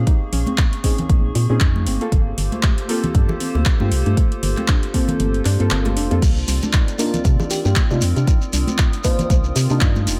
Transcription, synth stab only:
0.83 1.32 C4 medium
0.83 1.32 C#4 medium
0.83 1.33 D#4 medium
0.83 1.33 G#4 medium
1.49 1.85 C4 medium
1.49 1.85 C#4 medium
1.49 1.85 D#4 medium
1.49 1.85 G#4 loud
2.01 2.10 A#3 medium
2.01 2.10 C4 medium
2.01 2.10 F4 medium
2.01 2.10 A4 loud
2.88 3.77 A#3 loud
2.88 3.77 C4 medium
2.88 3.77 F4 medium
2.88 3.78 A4 loud
3.80 3.89 A#3 medium
3.80 3.89 C4 medium
3.80 3.90 F4 medium
3.80 3.90 G4 medium
4.94 5.43 A#3 medium
4.94 5.43 C4 medium
4.94 5.43 F4 medium
4.94 5.43 A4 medium
5.59 6.08 A#3 medium
5.59 6.08 C4 medium
5.59 6.08 F4 medium
5.59 6.08 A4 loud
6.11 6.20 A#3 medium
6.11 6.20 C4 medium
6.11 6.20 F4 medium
6.11 6.20 A4 loud
6.98 7.87 A#3 loud
6.98 7.87 D4 medium
6.98 7.87 D#4 medium
6.98 7.88 F4 loud
7.90 7.99 A#3 medium
7.90 8.00 D4 medium
7.90 8.00 D#4 medium
7.90 8.00 F4 loud
9.04 9.53 A#3 medium
9.04 9.53 D4 medium
9.04 9.53 D#4 medium
9.04 9.53 F4 medium
9.70 10.05 A#3 medium
9.70 10.06 D4 medium
9.70 10.06 D#4 medium
9.70 10.06 F4 loud

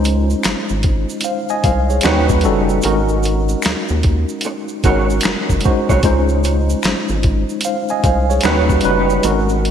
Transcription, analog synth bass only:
0.00 0.35 C#2 loud
0.45 0.55 G#1 medium
0.71 1.05 G#1 medium
1.64 1.99 C2 loud
2.05 2.47 D#2 loud
2.45 2.80 F#1 medium
2.85 3.55 G#1 loud
3.65 3.75 D#2 soft
3.90 4.25 D#2 medium
4.85 5.20 G#1 medium
5.25 5.35 F#1 soft
5.50 5.63 F#1 medium
5.90 6.03 C2 medium
6.04 6.75 C#2 loud
6.84 6.94 G#1 medium
7.10 7.45 G#1 medium
8.04 8.39 C2 medium
8.44 8.80 D#2 loud
8.85 9.20 F#1 medium
9.24 9.71 G#1 loud

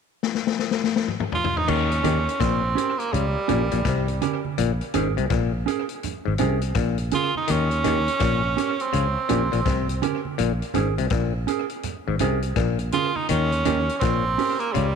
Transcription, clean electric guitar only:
2.04 2.21 C#4 medium
2.04 2.21 G4 medium
2.04 2.22 A#4 medium
2.75 2.93 C#4 medium
2.75 2.94 G4 medium
2.75 2.94 A#4 medium
3.48 3.66 C#4 medium
3.48 3.66 G4 medium
3.48 3.67 A#4 medium
4.22 4.39 C#4 medium
4.22 4.39 G4 medium
4.22 4.40 A#4 medium
4.94 5.11 C#4 medium
4.94 5.12 G#4 loud
4.94 5.12 A#4 loud
5.66 5.83 C#4 medium
5.66 5.84 G#4 medium
5.66 5.84 A#4 medium
6.40 6.56 C#4 medium
6.40 6.57 G#4 medium
6.40 6.57 A#4 medium
6.62 muted clean electric guitar stroke soft
7.12 7.29 C#4 medium
7.12 7.29 G#4 medium
7.12 7.30 A#4 medium
7.84 8.01 C#4 medium
7.84 8.02 G4 loud
7.84 8.02 A#4 medium
8.57 8.74 C#4 medium
8.57 8.74 G4 medium
8.57 8.75 A#4 medium
9.29 9.47 C#4 medium
9.29 9.47 G4 medium
9.29 9.47 A#4 medium
10.02 10.19 C#4 medium
10.02 10.20 G4 medium
10.02 10.20 A#4 loud
10.75 10.92 C#4 medium
10.75 10.92 G#4 medium
10.75 10.93 A#4 loud
11.47 11.64 C#4 medium
11.47 11.65 G#4 medium
11.47 11.65 A#4 medium
12.20 12.37 C#4 medium
12.20 12.38 G#4 loud
12.20 12.38 A#4 medium
12.43 muted clean electric guitar stroke soft
12.93 13.10 C#4 medium
12.93 13.10 G#4 medium
12.93 13.11 A#4 loud
13.66 13.82 C#4 medium
13.66 13.83 G4 loud
13.66 13.83 A#4 loud
14.38 14.55 C#4 medium
14.38 14.56 G4 medium
14.38 14.56 A#4 loud

